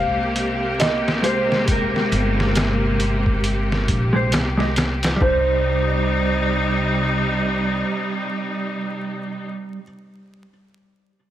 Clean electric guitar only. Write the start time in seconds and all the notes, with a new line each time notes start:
Already playing: G#3 G4 C5
1.22 G#3 G4 C5
1.65 G#3 G4
1.72 A#4
4.13 G#3 G4 C5
4.57 G#3 G4 D#5
5.16 G3
5.21 D#4
5.26 C5